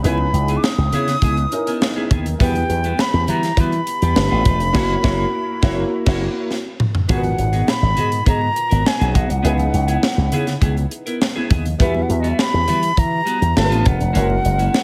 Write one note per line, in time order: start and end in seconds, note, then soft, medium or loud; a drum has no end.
0.02 0.27 C#2 loud
0.02 0.25 B3 medium
0.02 1.47 C#4 medium
0.02 1.48 D#4 medium
0.02 1.48 E4 medium
0.02 0.19 E4 medium
0.02 1.48 G#4 medium
0.02 1.49 B4 medium
0.02 closed hi-hat medium
0.02 muted conga soft
0.06 0.18 G#4 loud
0.06 0.58 B5 loud
0.18 muted clean electric guitar stroke soft
0.18 muted conga soft
0.18 high conga medium
0.33 0.56 C#2 loud
0.33 muted clean electric guitar stroke soft
0.33 closed hi-hat medium
0.48 0.65 B3 medium
0.48 0.65 E4 medium
0.48 0.64 G#4 medium
0.48 closed hi-hat soft
0.57 0.65 D6 medium
0.63 2.10 D#6 loud
0.63 snare loud
0.63 muted conga soft
0.78 0.89 C#2 medium
0.78 muted clean electric guitar stroke soft
0.93 1.15 C#3 loud
0.93 1.13 B3 medium
0.93 1.08 E4 medium
0.93 1.07 G#4 loud
0.93 closed hi-hat medium
0.93 low conga medium
1.08 muted clean electric guitar stroke soft
1.08 snare soft
1.08 closed hi-hat soft
1.22 1.45 C#2 loud
1.22 1.42 B3 medium
1.22 1.37 E4 medium
1.22 1.37 G#4 loud
1.22 kick medium
1.22 closed hi-hat medium
1.22 low conga medium
1.37 muted clean electric guitar stroke soft
1.37 closed hi-hat soft
1.37 muted conga soft
1.52 2.40 C#4 medium
1.52 2.40 D#4 medium
1.52 2.37 E4 medium
1.52 2.40 G#4 medium
1.52 2.40 A#4 medium
1.52 muted clean electric guitar stroke soft
1.52 closed hi-hat medium
1.67 1.80 B3 medium
1.67 1.81 E4 medium
1.67 1.82 A#4 medium
1.67 closed hi-hat medium
1.81 muted clean electric guitar stroke soft
1.81 snare loud
1.81 muted conga soft
1.96 2.10 B3 medium
1.96 2.11 E4 medium
1.96 2.12 G#4 medium
1.96 muted conga soft
2.11 2.33 D#2 medium
2.11 2.26 B3 medium
2.11 2.26 E4 medium
2.11 2.25 G#4 medium
2.11 kick loud
2.11 closed hi-hat medium
2.11 high conga medium
2.11 low conga medium
2.25 muted clean electric guitar stroke soft
2.25 closed hi-hat medium
2.25 high conga medium
2.39 2.63 E2 loud
2.39 2.60 G3 medium
2.39 4.12 B3 medium
2.39 2.56 B3 medium
2.39 4.12 E4 medium
2.39 2.55 F#4 medium
2.39 4.13 G4 medium
2.39 4.13 B4 medium
2.39 3.02 G5 loud
2.39 kick loud
2.39 closed hi-hat medium
2.39 muted conga soft
2.54 muted clean electric guitar stroke soft
2.54 closed hi-hat soft
2.54 muted conga soft
2.54 high conga medium
2.69 2.92 E2 loud
2.69 muted clean electric guitar stroke soft
2.69 closed hi-hat medium
2.84 3.01 G3 medium
2.84 3.00 B3 medium
2.84 3.00 F#4 medium
2.84 closed hi-hat soft
2.98 3.31 B5 loud
2.98 snare loud
2.98 muted conga soft
3.13 3.25 E2 loud
3.13 muted clean electric guitar stroke medium
3.13 muted conga soft
3.27 3.51 E3 loud
3.27 3.48 G3 medium
3.27 3.44 B3 loud
3.27 3.42 F#4 loud
3.27 3.61 A#5 loud
3.27 closed hi-hat medium
3.27 low conga medium
3.43 muted clean electric guitar stroke medium
3.43 snare soft
3.43 closed hi-hat soft
3.57 3.80 E3 loud
3.57 3.78 G3 medium
3.57 3.74 B3 medium
3.57 3.73 F#4 loud
3.57 6.52 B5 loud
3.57 kick medium
3.57 closed hi-hat medium
3.57 muted conga soft
3.57 low conga medium
3.72 muted clean electric guitar stroke soft
3.72 closed hi-hat soft
3.87 muted clean electric guitar stroke soft
3.87 closed hi-hat medium
4.02 4.13 E2 loud
4.02 4.16 G3 soft
4.02 4.16 B3 medium
4.02 4.17 G4 medium
4.02 closed hi-hat medium
4.15 4.28 G1 medium
4.15 4.74 A3 medium
4.15 4.74 D4 medium
4.15 4.75 F4 medium
4.15 4.75 G4 medium
4.15 4.75 B4 medium
4.15 snare loud
4.30 4.42 A1 loud
4.30 4.44 A3 medium
4.30 4.45 B3 medium
4.30 4.46 F4 medium
4.45 4.60 E1 loud
4.45 4.61 A3 medium
4.45 4.61 B3 medium
4.45 4.59 F4 medium
4.45 kick loud
4.45 closed hi-hat loud
4.45 high conga medium
4.45 low conga medium
4.60 4.71 F1 loud
4.60 muted clean electric guitar stroke soft
4.60 closed hi-hat medium
4.60 high conga medium
4.73 4.95 F#1 loud
4.73 4.94 A#3 loud
4.73 4.95 A#3 loud
4.73 4.94 E4 loud
4.73 4.96 E4 loud
4.73 4.94 F#4 loud
4.73 4.96 F#4 loud
4.73 4.95 C#5 loud
4.73 kick loud
4.73 snare loud
4.73 crash medium
5.03 5.24 F#1 loud
5.03 5.23 A#3 loud
5.03 5.25 A#3 loud
5.03 5.23 E4 loud
5.03 5.25 E4 loud
5.03 5.24 F#4 loud
5.03 5.24 C#5 loud
5.03 kick loud
5.03 snare loud
5.62 5.83 F#1 loud
5.62 5.82 A#3 loud
5.62 5.83 A#3 loud
5.62 5.83 E4 loud
5.62 5.83 F#4 loud
5.62 5.84 C#5 loud
5.62 kick loud
5.62 snare loud
6.06 6.27 F#1 loud
6.06 6.26 A#3 loud
6.06 6.27 A#3 loud
6.06 6.27 E4 loud
6.06 6.27 F#4 loud
6.06 6.28 C#5 loud
6.06 kick loud
6.06 snare loud
6.06 crash medium
6.51 snare medium
6.80 mid tom loud
6.95 floor tom medium
7.08 7.32 G#1 loud
7.08 9.40 A#2 medium
7.08 7.29 B3 medium
7.08 9.40 D#4 medium
7.08 7.23 F#4 loud
7.08 9.41 F#4 medium
7.08 9.41 G#4 medium
7.08 7.22 G#4 loud
7.08 7.17 A#4 medium
7.08 7.71 F#5 loud
7.08 kick loud
7.08 closed hi-hat loud
7.17 9.44 B4 medium
7.23 muted clean electric guitar stroke soft
7.23 closed hi-hat soft
7.23 high conga medium
7.38 7.61 G#1 medium
7.38 muted clean electric guitar stroke soft
7.38 closed hi-hat medium
7.53 7.70 B3 medium
7.53 7.69 F#4 medium
7.53 7.69 G#4 medium
7.53 closed hi-hat soft
7.67 8.27 B5 loud
7.67 snare loud
7.67 muted conga soft
7.82 7.94 G#1 loud
7.82 muted clean electric guitar stroke soft
7.97 8.20 G#2 loud
7.97 8.17 B3 medium
7.97 8.11 F#4 loud
7.97 8.10 G#4 medium
7.97 closed hi-hat medium
7.97 low conga medium
8.11 muted clean electric guitar stroke medium
8.11 closed hi-hat soft
8.26 8.49 G#2 loud
8.26 8.46 B3 medium
8.26 8.41 F#4 medium
8.26 8.40 G#4 medium
8.26 8.89 A#5 loud
8.26 kick medium
8.26 closed hi-hat medium
8.26 muted conga soft
8.26 low conga medium
8.41 muted clean electric guitar stroke medium
8.41 muted conga soft
8.55 muted clean electric guitar stroke soft
8.55 closed hi-hat medium
8.70 8.83 G#1 medium
8.70 8.83 B3 medium
8.70 8.84 F#4 medium
8.70 8.85 A#4 medium
8.70 closed hi-hat medium
8.84 9.17 G#5 loud
8.84 muted clean electric guitar stroke medium
8.84 snare loud
8.99 9.12 B1 medium
8.99 9.13 B3 medium
8.99 9.14 F#4 medium
8.99 9.15 G#4 medium
8.99 closed hi-hat soft
9.14 9.26 B1 loud
9.14 9.30 B3 medium
9.14 9.29 F#4 medium
9.14 9.28 G#4 medium
9.14 10.92 F#5 medium
9.14 kick loud
9.14 closed hi-hat medium
9.14 high conga medium
9.14 low conga medium
9.29 9.41 C2 medium
9.29 muted clean electric guitar stroke medium
9.29 closed hi-hat medium
9.29 high conga medium
9.43 9.67 C#2 loud
9.43 9.64 B3 loud
9.43 11.75 C#4 medium
9.43 11.75 D#4 medium
9.43 9.58 E4 medium
9.43 11.75 E4 medium
9.43 9.57 G#4 loud
9.43 11.76 G#4 medium
9.43 11.76 B4 medium
9.43 closed hi-hat loud
9.58 muted clean electric guitar stroke medium
9.58 closed hi-hat soft
9.58 high conga medium
9.72 9.96 C#2 loud
9.72 muted clean electric guitar stroke soft
9.72 closed hi-hat medium
9.88 10.05 B3 medium
9.88 10.04 E4 medium
9.88 10.04 G#4 medium
9.88 closed hi-hat soft
10.03 snare loud
10.17 10.29 C#2 medium
10.17 muted clean electric guitar stroke medium
10.17 muted conga soft
10.32 10.55 C#3 loud
10.32 10.53 B3 loud
10.32 10.47 E4 loud
10.32 10.46 G#4 loud
10.32 closed hi-hat medium
10.32 low conga medium
10.47 muted clean electric guitar stroke medium
10.47 snare soft
10.47 closed hi-hat soft
10.61 10.85 C#2 loud
10.61 10.82 B3 medium
10.61 10.76 E4 medium
10.61 10.75 G#4 medium
10.61 kick medium
10.61 closed hi-hat medium
10.61 muted conga soft
10.61 low conga medium
10.76 muted clean electric guitar stroke soft
10.76 closed hi-hat soft
10.76 muted conga soft
10.91 muted clean electric guitar stroke soft
10.91 closed hi-hat medium
11.06 11.20 B3 medium
11.06 11.20 E4 medium
11.06 11.22 A#4 medium
11.06 closed hi-hat medium
11.21 muted clean electric guitar stroke soft
11.21 snare loud
11.21 muted conga soft
11.36 11.49 B3 medium
11.36 11.50 E4 medium
11.36 11.51 G#4 medium
11.36 muted conga soft
11.50 11.73 D#2 loud
11.50 11.66 B3 medium
11.50 11.65 E4 medium
11.50 11.64 G#4 medium
11.50 kick loud
11.50 closed hi-hat medium
11.50 high conga medium
11.50 low conga medium
11.65 muted clean electric guitar stroke soft
11.65 closed hi-hat medium
11.65 high conga medium
11.79 12.02 E2 loud
11.79 12.00 G3 medium
11.79 13.52 B3 medium
11.79 11.94 B3 loud
11.79 13.52 E4 medium
11.79 13.52 F#4 medium
11.79 11.94 F#4 medium
11.79 13.53 G4 medium
11.79 13.53 B4 medium
11.79 12.04 E5 loud
11.79 kick loud
11.79 closed hi-hat medium
11.79 muted conga soft
11.95 muted clean electric guitar stroke soft
11.95 muted conga soft
11.95 high conga medium
12.02 12.12 F#5 medium
12.09 12.32 E2 loud
12.09 12.22 E5 medium
12.09 muted clean electric guitar stroke medium
12.09 closed hi-hat medium
12.20 12.39 B3 medium
12.20 12.39 F#4 medium
12.20 12.30 D#5 medium
12.20 closed hi-hat soft
12.24 12.40 G3 medium
12.29 12.41 E5 loud
12.39 13.01 B5 loud
12.39 snare loud
12.53 12.65 E2 loud
12.53 muted clean electric guitar stroke soft
12.53 muted conga soft
12.68 12.90 E3 loud
12.68 12.88 G3 loud
12.68 12.83 B3 medium
12.68 12.81 F#4 loud
12.68 closed hi-hat medium
12.68 low conga medium
12.82 muted clean electric guitar stroke medium
12.82 closed hi-hat soft
12.97 13.20 E3 loud
12.97 13.59 A#5 loud
12.97 muted clean electric guitar stroke soft
12.97 kick medium
12.97 closed hi-hat medium
12.97 muted conga soft
12.97 low conga medium
13.11 muted clean electric guitar stroke soft
13.25 13.46 G3 loud
13.25 13.40 B3 medium
13.25 13.39 F#4 loud
13.25 closed hi-hat medium
13.40 13.53 E2 medium
13.40 muted clean electric guitar stroke medium
13.40 closed hi-hat medium
13.55 13.72 G1 loud
13.55 14.15 A3 medium
13.55 14.15 D4 medium
13.55 14.15 F4 medium
13.55 14.15 G4 medium
13.55 13.63 A4 medium
13.55 13.89 A5 loud
13.55 muted clean electric guitar stroke soft
13.55 snare loud
13.64 14.19 B4 medium
13.70 13.82 A1 medium
13.70 13.83 A3 medium
13.70 13.84 B3 medium
13.70 13.85 F4 medium
13.70 closed hi-hat soft
13.70 muted conga soft
13.84 13.97 E1 medium
13.84 14.00 A3 medium
13.84 13.99 B3 medium
13.84 13.98 F4 medium
13.84 14.83 F#5 loud
13.84 kick loud
13.84 closed hi-hat medium
13.84 high conga medium
13.84 low conga medium
13.99 14.12 F1 loud
13.99 muted clean electric guitar stroke medium
13.99 closed hi-hat medium
13.99 high conga medium
14.13 14.38 F#1 loud
14.13 14.83 G#3 medium
14.13 14.34 A#3 medium
14.13 14.83 C#4 medium
14.13 14.29 E4 medium
14.13 14.83 E4 medium
14.13 14.28 F#4 medium
14.13 14.83 F#4 medium
14.13 14.83 A#4 medium
14.13 closed hi-hat medium
14.29 muted clean electric guitar stroke soft
14.29 muted conga soft
14.29 high conga medium
14.44 14.67 F#1 loud
14.44 muted clean electric guitar stroke soft
14.44 closed hi-hat medium
14.58 14.75 A#3 soft
14.58 14.75 E4 medium
14.58 14.74 F#4 medium
14.58 closed hi-hat soft
14.74 snare loud